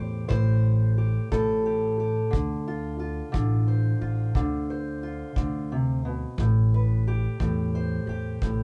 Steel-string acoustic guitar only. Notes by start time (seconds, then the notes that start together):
Already playing: A2 G4
0.00 C5
0.28 A2 C5
0.98 G4
1.32 A2 A4
1.66 G4
2.00 G4
2.31 D3
2.68 F4
2.99 F4
3.32 D3
3.68 C5
4.01 F4
4.35 D3
4.70 C5
5.03 F4
5.36 D3
5.72 C3
6.05 B2
6.40 A2
6.74 B4
7.08 G4
7.40 A2
7.75 C5
8.09 G4
8.42 A2